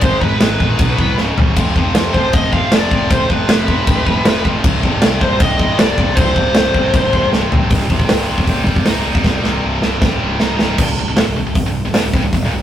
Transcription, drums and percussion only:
0.01 kick loud
0.01 crash medium
0.21 kick medium
0.41 snare loud
0.41 crash medium
0.60 kick medium
0.79 kick loud
0.79 crash medium
0.98 kick medium
1.18 snare medium
1.38 floor tom loud
1.57 kick loud
1.57 crash medium
1.76 kick medium
1.95 snare loud
1.95 crash medium
2.14 kick medium
2.33 kick loud
2.33 crash medium
2.53 kick medium
2.72 snare loud
2.72 crash medium
2.91 kick medium
3.10 kick loud
3.10 crash medium
3.30 kick medium
3.49 snare loud
3.49 crash medium
3.68 kick medium
3.87 kick loud
3.87 crash medium
4.07 kick medium
4.25 snare loud
4.25 crash medium
4.45 kick medium
4.64 kick loud
4.64 crash medium
4.83 kick medium
5.02 snare loud
5.02 crash medium
5.21 kick medium
5.40 kick loud
5.40 crash medium
5.59 kick medium
5.79 snare loud
5.79 crash medium
5.98 kick medium
6.17 kick loud
6.17 crash medium
6.36 kick medium
6.55 snare loud
6.55 crash medium
6.74 kick medium
6.94 kick loud
6.94 crash medium
7.13 kick medium
7.33 snare medium
7.52 floor tom medium
7.70 kick loud
7.70 open hi-hat medium
7.90 kick medium
8.00 kick medium
8.09 snare loud
8.09 open hi-hat medium
8.38 kick medium
8.47 kick loud
8.47 open hi-hat medium
8.67 kick medium
8.76 kick medium
8.86 snare medium
8.86 open hi-hat medium
9.15 kick loud
9.24 kick loud
9.24 snare medium
9.44 snare medium
9.82 snare medium
10.02 kick loud
10.02 snare medium
10.40 snare medium
10.59 snare medium
10.78 kick loud
10.78 crash loud
11.17 snare loud
11.17 open hi-hat medium
11.55 kick loud
11.55 open hi-hat medium
11.94 snare medium
11.94 open hi-hat medium
12.14 kick loud
12.33 kick medium
12.33 open hi-hat medium

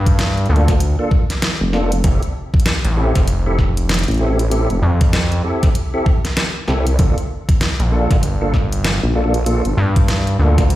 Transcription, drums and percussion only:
0.06 kick loud
0.06 closed hi-hat medium
0.19 snare loud
0.19 closed hi-hat medium
0.37 closed hi-hat soft
0.46 closed hi-hat soft
0.56 closed hi-hat soft
0.68 kick loud
0.68 snare soft
0.68 closed hi-hat medium
0.80 closed hi-hat medium
1.11 kick loud
1.30 snare soft
1.30 closed hi-hat medium
1.42 snare loud
1.42 closed hi-hat medium
1.73 snare medium
1.92 closed hi-hat medium
2.04 kick loud
2.04 closed hi-hat medium
2.23 closed hi-hat soft
2.54 kick loud
2.60 closed hi-hat medium
2.66 snare loud
2.66 closed hi-hat medium
2.85 closed hi-hat soft
3.15 kick loud
3.15 snare soft
3.15 closed hi-hat medium
3.28 closed hi-hat medium
3.59 kick medium
3.59 snare soft
3.77 closed hi-hat medium
3.89 snare loud
3.89 closed hi-hat medium
3.94 closed hi-hat medium
3.99 closed hi-hat soft
4.03 closed hi-hat soft
4.08 closed hi-hat soft
4.11 closed hi-hat soft
4.14 closed hi-hat soft
4.18 closed hi-hat soft
4.39 closed hi-hat medium
4.51 closed hi-hat medium
4.70 closed hi-hat soft
5.01 kick loud
5.01 closed hi-hat medium
5.13 snare loud
5.13 closed hi-hat medium
5.32 closed hi-hat soft
5.63 kick loud
5.63 snare soft
5.63 closed hi-hat medium
5.75 closed hi-hat medium
6.06 kick loud
6.25 snare soft
6.25 closed hi-hat soft
6.37 snare loud
6.37 closed hi-hat medium
6.68 snare soft
6.87 closed hi-hat soft
6.99 kick loud
6.99 closed hi-hat medium
7.18 closed hi-hat soft
7.49 kick loud
7.49 closed hi-hat soft
7.61 snare loud
7.61 closed hi-hat medium
7.80 closed hi-hat soft
8.11 kick loud
8.11 snare soft
8.11 closed hi-hat medium
8.23 closed hi-hat medium
8.54 kick medium
8.54 snare soft
8.72 closed hi-hat medium
8.84 snare loud
8.84 closed hi-hat medium
9.34 closed hi-hat soft
9.46 closed hi-hat medium
9.65 closed hi-hat soft
9.96 kick loud
9.96 closed hi-hat medium
10.08 snare loud
10.08 closed hi-hat medium
10.27 closed hi-hat soft
10.58 kick loud
10.58 snare soft
10.58 closed hi-hat soft
10.70 closed hi-hat medium

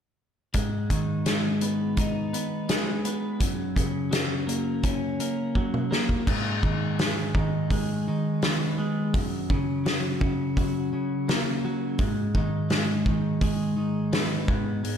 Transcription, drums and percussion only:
0.54 kick medium
0.54 closed hi-hat medium
0.90 kick medium
0.90 closed hi-hat medium
1.26 snare medium
1.26 closed hi-hat medium
1.61 closed hi-hat medium
1.97 kick medium
1.97 closed hi-hat medium
2.34 closed hi-hat medium
2.69 snare medium
2.69 closed hi-hat medium
3.05 closed hi-hat medium
3.40 kick medium
3.40 closed hi-hat medium
3.76 kick medium
3.76 closed hi-hat medium
4.12 snare medium
4.12 closed hi-hat medium
4.49 closed hi-hat medium
4.83 kick medium
4.83 closed hi-hat medium
5.20 closed hi-hat soft
5.55 kick soft
5.74 mid tom soft
5.92 snare medium
6.09 kick medium
6.27 kick loud
6.27 crash medium
6.63 kick medium
6.99 snare medium
6.99 open hi-hat soft
7.35 kick medium
7.70 kick medium
7.70 open hi-hat soft
8.42 snare medium
8.42 open hi-hat soft
9.14 kick medium
9.14 open hi-hat soft
9.50 kick medium
9.86 snare medium
9.86 open hi-hat soft
10.21 kick medium
10.57 kick medium
10.57 open hi-hat soft
11.29 snare medium
11.29 open hi-hat soft
11.98 kick loud
11.98 open hi-hat soft
12.35 kick medium
12.70 snare medium
12.70 open hi-hat soft
13.06 kick medium
13.41 kick medium
13.41 open hi-hat soft
14.13 snare loud
14.13 open hi-hat soft
14.48 kick medium
14.85 open hi-hat soft

